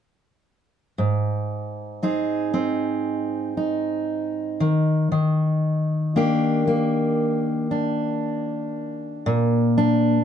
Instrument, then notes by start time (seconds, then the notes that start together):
steel-string acoustic guitar
0.98 G#2
2.03 C4 D#4 G#4
2.54 C4
3.57 D#4
4.60 D#3
5.12 D#3
6.16 A#3 D4 G4
6.67 A#3
7.71 D4
9.26 A#2
9.78 D4